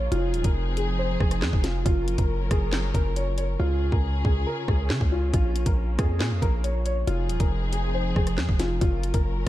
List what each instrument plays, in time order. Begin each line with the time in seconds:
Already playing: string section A#3 C#4 F4, grand piano C#5
0.12 808-style bass F1, string section F3 C4 D#4 G#4, grand piano F4, closed hi-hat
0.33 808-style bass D#1, closed hi-hat
0.44 808-style bass F1, grand piano A#4, kick, closed hi-hat
0.77 grand piano G#4, closed hi-hat
0.98 grand piano C5
1.20 808-style bass F1, grand piano G#4, kick, cross-stick
1.31 cross-stick, closed hi-hat
1.42 808-style bass F2, snare, clap
1.53 808-style bass F1, kick
1.64 grand piano F4, snare, closed hi-hat
1.85 808-style bass F#1, string section F#3 C#4 F4 A#4, grand piano F4, kick, closed hi-hat
2.08 closed hi-hat
2.18 808-style bass F#1, grand piano A#4, kick, closed hi-hat
2.51 808-style bass F#1, grand piano G#4, kick, cross-stick, closed hi-hat
2.73 snare, clap
2.94 808-style bass F#1, grand piano A#4, kick, closed hi-hat
3.16 grand piano C#5, closed hi-hat
3.38 grand piano C#5, closed hi-hat
3.59 808-style bass C#2, string section C#3 C#4 F4 G#4, grand piano F4
3.92 808-style bass C#2, grand piano A#4, kick
4.25 808-style bass C#2, grand piano G#4, kick
4.47 grand piano A#4
4.68 808-style bass C#2, grand piano G#4, kick, cross-stick
4.90 808-style bass C#3, snare, clap
5.01 808-style bass C#2, kick
5.12 grand piano F4
5.33 808-style bass A#1, string section A#3, grand piano F4, kick, closed hi-hat
5.56 closed hi-hat
5.66 808-style bass A#1, grand piano A#4, kick, closed hi-hat
5.99 808-style bass F2, grand piano G#4, kick, cross-stick, closed hi-hat
6.20 808-style bass A#2, snare, clap
6.31 808-style bass F2
6.42 808-style bass A#1, grand piano A#4, kick, closed hi-hat
6.64 grand piano C#5, closed hi-hat
6.86 grand piano C#5, closed hi-hat
7.07 808-style bass F1, string section F3 C4 D#4 G#4, grand piano F4, closed hi-hat
7.29 808-style bass D#1, closed hi-hat
7.40 808-style bass F1, grand piano A#4, kick, closed hi-hat
7.73 grand piano G#4, closed hi-hat
7.94 grand piano C5
8.16 808-style bass F1, grand piano G#4, kick, cross-stick
8.27 cross-stick, closed hi-hat
8.38 808-style bass F2, snare, clap
8.49 808-style bass F1, kick
8.59 grand piano F4, snare, closed hi-hat
8.81 808-style bass F#1, string section F#3 C#4 F4 A#4, grand piano F4, kick, closed hi-hat
9.03 closed hi-hat
9.14 808-style bass F#1, grand piano A#4, kick, closed hi-hat